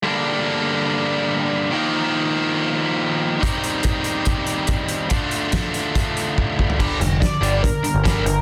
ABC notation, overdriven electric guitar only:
X:1
M:4/4
L:1/8
Q:1/4=143
K:Gm
V:1 name="Overdriven electric guitar" clef=bass
[G,,D,G,B,D]8 | [E,F,B,E]8 | [E,G,CE]8 | [D,A,DF]8 |
[G,,D,G,] [G,,D,] [G,,D,] [G,,D,G,] [G,,D,] [G,,D,] [G,,D,G,] [G,,D,] |]